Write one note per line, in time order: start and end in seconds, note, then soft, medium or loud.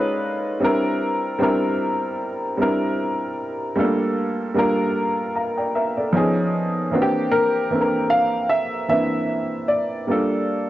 0.00 0.49 G#3 medium
0.00 0.50 C#4 medium
0.00 0.51 D#4 medium
0.00 0.51 F4 medium
0.00 0.63 A4 medium
0.00 0.55 B4 medium
0.00 0.62 D5 medium
0.60 1.29 G3 medium
0.60 1.29 C4 medium
0.60 1.30 D4 medium
0.60 1.30 E4 medium
0.64 1.31 A#4 loud
1.39 2.42 G3 medium
1.39 2.42 C4 medium
1.39 2.43 D4 medium
1.39 2.43 E4 medium
1.43 2.44 A#4 medium
2.57 3.60 G3 medium
2.57 3.60 C4 medium
2.57 3.61 D4 medium
2.57 3.62 E4 medium
2.61 3.62 A#4 medium
3.76 4.44 G3 medium
3.76 3.84 A3 medium
3.76 4.45 D4 medium
3.76 4.46 F4 medium
3.80 4.48 A#3 medium
3.80 4.46 A4 medium
4.55 5.57 G3 medium
4.55 5.58 A#3 medium
4.55 5.58 D4 medium
4.55 5.59 F4 medium
4.59 5.36 A#4 loud
5.35 5.56 F5 medium
5.35 5.56 A#5 medium
5.57 5.74 D5 soft
5.57 5.73 G5 medium
5.75 5.95 A#4 medium
5.75 5.95 E5 medium
5.97 6.34 A4 soft
5.97 6.34 D5 medium
6.12 6.81 F3 medium
6.12 6.82 B3 medium
6.12 6.82 C#4 medium
6.12 6.83 D#4 medium
6.17 6.83 G#4 medium
6.91 7.60 E3 medium
6.91 7.60 A#3 medium
6.91 7.61 C4 medium
6.91 7.62 D4 medium
6.91 7.01 F#4 medium
7.02 7.65 G4 loud
7.31 8.13 A#4 medium
7.70 8.73 E3 medium
7.70 8.74 A#3 medium
7.70 8.74 C4 medium
7.70 8.75 D4 medium
7.75 7.80 A4 medium
7.81 8.78 A#4 medium
8.10 8.47 F5 medium
8.50 8.86 E5 medium
8.89 9.91 E3 medium
8.89 9.92 A#3 medium
8.89 9.93 C4 medium
8.89 9.93 D4 medium
8.89 9.71 E5 medium
8.93 9.94 E4 medium
9.68 10.70 D5 medium
10.08 10.70 G3 medium
10.08 10.70 A#3 medium
10.08 10.70 D4 medium
10.08 10.70 F4 medium
10.12 10.70 A4 medium